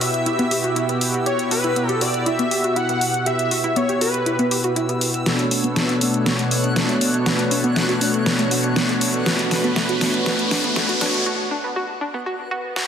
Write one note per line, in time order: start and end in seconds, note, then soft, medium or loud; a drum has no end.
0.00 5.22 B2 medium
0.00 5.22 B3 medium
0.00 5.22 E4 medium
0.00 5.22 F#4 medium
0.00 0.13 F#4 medium
0.00 5.22 G4 medium
0.00 0.97 E5 medium
0.00 1.01 E5 medium
0.00 5.27 E6 medium
0.00 open hi-hat medium
0.14 closed hi-hat soft
0.26 0.35 E4 medium
0.26 closed hi-hat medium
0.39 0.44 B3 medium
0.39 closed hi-hat soft
0.51 0.57 G4 medium
0.51 open hi-hat medium
0.64 0.73 F#4 medium
0.64 closed hi-hat soft
0.76 0.85 E4 medium
0.76 closed hi-hat medium
0.89 1.01 B3 medium
0.89 closed hi-hat soft
1.01 open hi-hat medium
1.14 closed hi-hat soft
1.26 1.35 G4 medium
1.26 1.50 C#5 loud
1.26 closed hi-hat medium
1.39 closed hi-hat soft
1.51 1.57 F#4 medium
1.51 1.88 B4 medium
1.51 1.98 B4 medium
1.51 open hi-hat medium
1.64 1.73 E4 medium
1.64 closed hi-hat soft
1.76 1.85 B3 medium
1.76 closed hi-hat medium
1.88 1.94 G4 medium
1.88 2.03 A4 medium
1.88 closed hi-hat soft
2.01 2.13 F#4 medium
2.01 2.25 D5 medium
2.01 2.28 D5 medium
2.01 open hi-hat medium
2.14 closed hi-hat soft
2.26 2.35 E4 medium
2.26 2.78 E5 loud
2.26 2.73 E5 loud
2.26 closed hi-hat medium
2.39 2.44 B3 medium
2.39 closed hi-hat soft
2.51 2.57 G4 medium
2.51 open hi-hat medium
2.64 2.73 F#4 medium
2.64 closed hi-hat soft
2.76 2.85 E4 medium
2.76 3.23 F#5 loud
2.76 3.26 F#5 loud
2.76 closed hi-hat medium
2.89 3.01 B3 medium
2.89 closed hi-hat soft
3.01 open hi-hat medium
3.14 closed hi-hat soft
3.26 3.35 G4 medium
3.26 3.73 E5 loud
3.26 3.78 E5 loud
3.26 closed hi-hat medium
3.39 closed hi-hat soft
3.51 3.57 F#4 medium
3.51 open hi-hat loud
3.64 3.73 E4 medium
3.64 closed hi-hat soft
3.76 3.85 B3 medium
3.76 4.00 C#5 loud
3.76 4.01 C#5 medium
3.76 closed hi-hat medium
3.89 3.94 G4 medium
3.89 closed hi-hat soft
4.01 4.13 F#4 medium
4.01 4.72 B4 medium
4.01 open hi-hat medium
4.14 closed hi-hat soft
4.26 4.35 E4 medium
4.26 closed hi-hat medium
4.39 4.44 B3 medium
4.39 closed hi-hat soft
4.51 4.57 G4 medium
4.51 open hi-hat loud
4.64 4.73 F#4 medium
4.64 closed hi-hat soft
4.76 4.85 E4 medium
4.76 closed hi-hat medium
4.89 5.01 B3 medium
4.89 closed hi-hat soft
5.01 open hi-hat medium
5.14 closed hi-hat soft
5.26 11.22 B2 medium
5.26 5.98 B2 medium
5.26 5.98 A3 medium
5.26 11.22 B3 medium
5.26 5.98 B3 medium
5.26 11.22 D4 medium
5.26 5.98 D4 medium
5.26 5.35 F#4 medium
5.26 5.98 F#4 medium
5.26 9.22 A4 medium
5.26 5.98 B4 medium
5.26 11.22 C#5 medium
5.26 11.26 F#6 medium
5.26 snare soft
5.26 closed hi-hat medium
5.26 riser medium
5.39 closed hi-hat soft
5.51 5.57 D4 medium
5.51 open hi-hat loud
5.64 5.73 B3 medium
5.64 closed hi-hat soft
5.76 5.85 A3 medium
5.76 snare soft
5.76 closed hi-hat medium
5.89 5.94 F#4 medium
5.89 closed hi-hat soft
6.01 7.23 B2 medium
6.01 7.23 A3 medium
6.01 7.23 B3 medium
6.01 6.13 D4 medium
6.01 7.23 D4 medium
6.01 7.23 F#4 medium
6.01 7.23 C#5 medium
6.01 open hi-hat loud
6.14 closed hi-hat soft
6.26 6.35 B3 medium
6.26 snare soft
6.26 closed hi-hat medium
6.39 6.44 A3 medium
6.39 closed hi-hat soft
6.51 6.57 F#4 medium
6.51 open hi-hat medium
6.64 6.73 D4 medium
6.64 closed hi-hat soft
6.76 6.85 B3 medium
6.76 snare medium
6.76 closed hi-hat medium
6.89 7.01 A3 medium
6.89 closed hi-hat soft
7.01 open hi-hat loud
7.14 closed hi-hat soft
7.26 7.98 B2 medium
7.26 7.98 A3 medium
7.26 7.98 B3 medium
7.26 7.98 D4 medium
7.26 7.35 F#4 medium
7.26 7.98 F#4 medium
7.26 7.98 B4 medium
7.26 snare medium
7.26 closed hi-hat medium
7.39 closed hi-hat soft
7.51 7.57 D4 medium
7.51 open hi-hat loud
7.64 7.73 B3 medium
7.64 closed hi-hat soft
7.76 7.85 A3 medium
7.76 snare medium
7.76 closed hi-hat medium
7.89 7.94 F#4 medium
7.89 closed hi-hat soft
8.01 9.23 B2 medium
8.01 9.23 A3 medium
8.01 9.23 B3 medium
8.01 8.13 D4 medium
8.01 9.23 D4 medium
8.01 9.23 F#4 medium
8.01 9.23 C#5 medium
8.01 open hi-hat loud
8.14 closed hi-hat soft
8.26 8.35 B3 medium
8.26 snare medium
8.26 closed hi-hat medium
8.39 8.44 A3 medium
8.39 closed hi-hat soft
8.51 8.57 F#4 medium
8.51 open hi-hat loud
8.64 8.73 D4 medium
8.76 8.85 B3 medium
8.76 snare medium
8.76 closed hi-hat medium
8.89 9.01 A3 medium
8.89 closed hi-hat soft
9.01 open hi-hat loud
9.14 closed hi-hat soft
9.26 9.98 B2 medium
9.26 9.98 A3 medium
9.26 9.98 B3 medium
9.26 9.98 D4 medium
9.26 9.35 F#4 medium
9.26 9.98 F#4 medium
9.26 11.24 B4 medium
9.26 9.98 B4 medium
9.26 snare medium
9.26 closed hi-hat medium
9.39 closed hi-hat soft
9.51 9.57 D4 medium
9.51 snare medium
9.51 open hi-hat loud
9.64 9.73 B3 medium
9.64 closed hi-hat soft
9.76 9.85 A3 medium
9.76 snare medium
9.76 closed hi-hat medium
9.89 9.94 F#4 medium
9.89 closed hi-hat soft
10.01 10.24 B2 medium
10.01 10.24 A3 medium
10.01 10.24 B3 medium
10.01 10.13 D4 medium
10.01 10.24 D4 medium
10.01 10.24 F#4 medium
10.01 10.24 C#5 medium
10.01 snare medium
10.01 open hi-hat loud
10.14 closed hi-hat soft
10.26 10.98 B2 medium
10.26 10.98 A3 medium
10.26 10.98 B3 medium
10.26 10.98 D4 medium
10.26 10.35 F#4 medium
10.26 10.98 F#4 medium
10.26 10.98 B4 medium
10.26 snare medium
10.26 closed hi-hat medium
10.39 closed hi-hat soft
10.51 10.57 D4 medium
10.51 snare medium
10.51 open hi-hat loud
10.64 10.73 B3 medium
10.64 closed hi-hat soft
10.76 10.85 A3 medium
10.76 snare medium
10.76 closed hi-hat medium
10.89 10.94 F#4 medium
10.89 closed hi-hat soft
11.01 11.24 B2 medium
11.01 11.24 A3 medium
11.01 11.24 B3 medium
11.01 11.13 D4 medium
11.01 11.24 D4 medium
11.01 11.24 F#4 medium
11.01 11.24 C#5 medium
11.01 snare medium
11.01 open hi-hat loud
11.14 closed hi-hat soft
11.26 11.35 F#4 medium
11.51 11.57 D4 medium
11.64 11.73 B3 medium
11.76 11.85 F#4 medium
12.01 12.07 D4 medium
12.14 12.23 B3 medium
12.26 12.35 F#4 medium
12.26 swell medium
12.51 12.60 F#4 medium
12.76 12.85 F#4 medium
12.76 snare medium